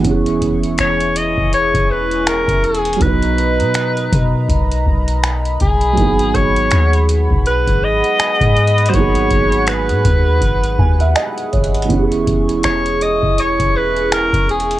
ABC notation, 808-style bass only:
X:1
M:4/4
L:1/16
Q:"Swing 16ths" 1/4=81
K:G#m
V:1 name="808-style bass" clef=bass
E,,,2 E,,,2 E,,,3 E,,,2 E,,,4 E,,,3 | B,,,3 B,,3 B,,2 B,,,2 B,,,4 B,,,2 | G,,,2 G,,,2 D,,3 B,,,2 G,,,2 z2 G,,3 | G,,,2 G,,,3 G,, D,,2 G,,,2 D,,2 z2 G,,,2 |
E,,,2 E,,,2 E,,,3 E,,,2 E,,,4 E,,,3 |]